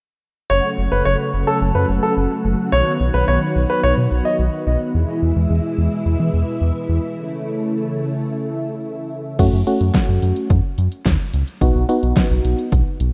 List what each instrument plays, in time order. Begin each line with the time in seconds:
0.50 analog synth bass F#1, string machine C#3 F#3 A3 F#4, grand piano C#5
0.78 analog synth bass F#1
0.92 analog synth bass F#1, grand piano B4
1.05 analog synth bass F#1, grand piano C#5
1.34 analog synth bass F#1
1.47 grand piano A4
1.61 analog synth bass F#1
1.75 analog synth bass F#2, grand piano B4
1.89 analog synth bass F#1
2.03 grand piano A4
2.17 analog synth bass F#1
2.45 analog synth bass F#1
2.72 analog synth bass B1, string machine D#3 B3, grand piano C#5
3.00 analog synth bass B1
3.14 analog synth bass B1, grand piano B4
3.28 analog synth bass B1, grand piano C#5
3.56 analog synth bass B1
3.70 grand piano B4
3.83 analog synth bass B1, grand piano C#5
3.97 analog synth bass B2
4.11 analog synth bass B1
4.25 grand piano D#5
4.39 analog synth bass B1
4.67 analog synth bass B1
4.95 analog synth bass E2, string machine B2 E3 G#3 E4
5.22 analog synth bass E2
5.36 analog synth bass E2
5.50 analog synth bass E2
5.78 analog synth bass E2
6.06 analog synth bass E2
6.20 analog synth bass E3
6.34 analog synth bass E2
6.61 analog synth bass E2
6.89 analog synth bass E2
7.17 string machine C#3 A3
9.39 analog synth bass F#2, fm electric piano A3 C#4 F#4, kick, closed hi-hat, crash
9.53 analog synth bass F#2
9.67 fm electric piano A3 C#4 F#4, closed hi-hat
9.81 analog synth bass F#2, closed hi-hat
9.94 kick, snare, closed hi-hat
10.09 analog synth bass F#2
10.22 analog synth bass F#2, closed hi-hat
10.36 closed hi-hat
10.50 analog synth bass F#2, kick, closed hi-hat
10.78 analog synth bass F#2, closed hi-hat
10.92 closed hi-hat
11.06 analog synth bass D#2, kick, snare, closed hi-hat
11.34 analog synth bass C#2, closed hi-hat
11.48 closed hi-hat
11.61 analog synth bass B1, fm electric piano B3 D#4 F#4, kick, closed hi-hat
11.75 analog synth bass B1
11.89 fm electric piano B3 D#4 F#4, closed hi-hat
12.03 analog synth bass B1, closed hi-hat
12.17 kick, snare, closed hi-hat
12.31 analog synth bass B1
12.45 analog synth bass B1, closed hi-hat
12.58 closed hi-hat
12.72 analog synth bass B1, kick, closed hi-hat
13.00 analog synth bass B1, closed hi-hat